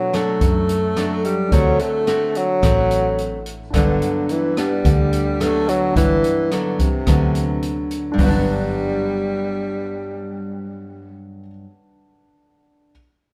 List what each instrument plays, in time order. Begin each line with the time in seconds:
Already playing: nylon-string guitar B2, tenor saxophone F#3, grand piano D4 A4 B4 F#5
0.13 nylon-string guitar F#3 A3 D4, tenor saxophone A3, cross-stick, closed hi-hat
0.41 fingered electric bass F#2, nylon-string guitar F#2, kick, closed hi-hat
0.69 closed hi-hat
0.96 nylon-string guitar F#3 A3 D4, cross-stick, closed hi-hat
1.25 tenor saxophone G3, closed hi-hat
1.48 fingered electric bass D2, nylon-string guitar D3 A3, tenor saxophone F#3, grand piano D4 A4 C5, kick, closed hi-hat
1.53 nylon-string guitar C4 F#4, grand piano F#5
1.79 tenor saxophone A3, closed hi-hat
2.07 nylon-string guitar A3 C4 F#4, cross-stick, closed hi-hat
2.35 tenor saxophone F#3, closed hi-hat
2.62 fingered electric bass A1, nylon-string guitar A2 A3 C4 F#4, kick, cross-stick, closed hi-hat
2.91 closed hi-hat
3.18 closed hi-hat
3.46 closed hi-hat
3.70 fingered electric bass G1, nylon-string guitar G2 F#3 B3 D4, grand piano D4 G5, kick, cross-stick, closed hi-hat
3.74 tenor saxophone D3, grand piano B4 F#5
4.02 closed hi-hat
4.29 tenor saxophone E3, closed hi-hat
4.57 tenor saxophone G3, nylon-string guitar B3 D4, cross-stick, closed hi-hat
4.85 fingered electric bass D2, nylon-string guitar D3, kick, closed hi-hat
5.13 closed hi-hat
5.40 nylon-string guitar F#3 B3 D4, tenor saxophone A3, cross-stick, closed hi-hat
5.68 tenor saxophone F#3, closed hi-hat
5.93 fingered electric bass G1, nylon-string guitar G2, tenor saxophone E3, grand piano D4 G5, kick, closed hi-hat
5.97 grand piano B4 F#5
6.24 closed hi-hat
6.51 tenor saxophone D3, nylon-string guitar F#3 B3 D4, cross-stick, closed hi-hat
6.79 tenor saxophone C3, kick, closed hi-hat
7.07 fingered electric bass D2, nylon-string guitar D3 F#3 B3 D4, kick, cross-stick, closed hi-hat
7.35 closed hi-hat
7.63 closed hi-hat
7.91 closed hi-hat
8.12 nylon-string guitar G2, grand piano D4
8.16 fingered electric bass G1, nylon-string guitar F#3, grand piano B4 G5, kick, floor tom, open hi-hat
8.21 tenor saxophone G3, nylon-string guitar B3, grand piano F#5
8.29 nylon-string guitar D4